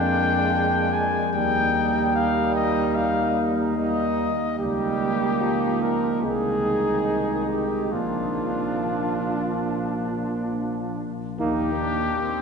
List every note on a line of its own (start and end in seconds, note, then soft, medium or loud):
0.00 1.17 F2 medium
0.00 1.36 G#3 medium
0.00 1.31 A#3 medium
0.00 1.17 D4 medium
0.00 0.94 G5 medium
0.93 1.33 G#5 medium
1.34 4.28 D#2 medium
1.34 3.77 G3 medium
1.34 3.74 A#3 medium
1.34 3.73 D#4 medium
1.34 2.14 G5 medium
2.15 2.55 F5 medium
2.55 2.97 D#5 medium
2.95 3.50 F5 medium
3.77 4.31 G3 soft
3.77 4.31 A#3 medium
3.77 4.31 D#4 medium
3.77 4.56 D#5 medium
4.59 6.25 C#2 medium
4.59 5.42 G3 medium
4.59 6.26 A#3 medium
4.59 6.20 D#4 medium
4.59 5.83 G4 medium
5.41 6.26 F3 soft
5.81 6.22 A#4 medium
6.22 7.92 C2 soft
6.22 7.92 D#3 soft
6.22 7.95 G#3 soft
6.22 7.90 D#4 medium
6.22 7.47 G#4 medium
7.49 7.93 G4 soft
7.92 11.02 A#1 soft
7.92 11.02 F3 medium
7.92 11.06 A#3 soft
7.92 11.02 D4 soft
7.92 10.52 F4 medium
11.38 12.10 D#2 medium
11.38 11.71 A#3 medium
11.38 11.83 D#4 medium
11.38 11.71 D#4 medium
11.38 12.42 G4 medium
11.81 12.23 D4 medium
12.23 12.42 C4 medium